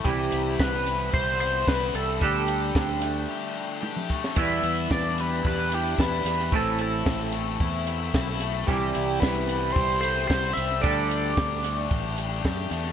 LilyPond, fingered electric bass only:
\new Staff \with { instrumentName = "Fingered electric bass" } { \clef bass \time 4/4 \key e \minor \tempo 4 = 111 c,8 c,8 c,4 c,4 c,8 c,8 | d,4 d,4 r2 | e,8 e,8 e,4 e,4 e,8 e,8 | a,,4 a,,4 e,4 b,,4 |
c,8 c,8 c,4 c,4 c,8 c,8 | d,4 d,4 a,,4 fis,8 e,8 | }